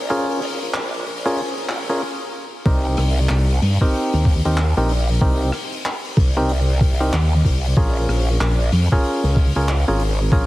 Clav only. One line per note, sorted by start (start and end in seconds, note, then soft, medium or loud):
0.10 0.40 C#4 loud
0.10 0.40 F4 medium
0.10 0.40 G#4 medium
0.10 0.40 A#4 loud
1.26 1.41 C#4 medium
1.26 1.41 F4 medium
1.26 1.41 G#4 medium
1.26 1.41 A#4 loud
1.89 2.02 C#4 medium
1.89 2.02 F4 medium
1.89 2.02 G#4 medium
1.89 2.02 A#4 medium
2.66 3.77 C4 medium
2.66 3.77 D#4 medium
2.66 3.77 G4 medium
2.66 3.77 A#4 medium
3.81 4.40 C4 loud
3.81 4.40 D#4 medium
3.81 4.40 G4 medium
3.81 4.40 A#4 loud
4.45 4.60 C4 medium
4.45 4.60 D#4 medium
4.45 4.60 G4 medium
4.45 4.60 A#4 medium
4.77 4.92 C4 medium
4.77 4.92 D#4 medium
4.77 4.92 G4 medium
4.77 4.92 A#4 medium
5.21 5.51 C4 loud
5.21 5.51 D#4 medium
5.21 5.51 G4 medium
5.21 5.51 A#4 loud
6.37 6.52 C4 medium
6.37 6.52 D#4 medium
6.37 6.52 G4 medium
6.37 6.52 A#4 loud
7.00 7.16 C4 medium
7.00 7.15 D#4 medium
7.00 7.16 G4 medium
7.00 7.16 A#4 medium
7.77 8.87 C#4 medium
7.77 8.87 F4 medium
7.77 8.87 G#4 medium
7.77 8.87 A#4 medium
8.92 9.51 C#4 loud
8.92 9.51 F4 medium
8.92 9.51 G#4 medium
8.92 9.51 A#4 loud
9.56 9.71 C#4 medium
9.56 9.71 F4 medium
9.56 9.71 G#4 medium
9.56 9.71 A#4 medium
9.88 10.03 C#4 medium
9.88 10.03 F4 medium
9.88 10.03 G#4 medium
9.88 10.03 A#4 medium
10.32 10.46 C#4 loud
10.32 10.46 F4 medium
10.32 10.46 G#4 medium
10.32 10.46 A#4 loud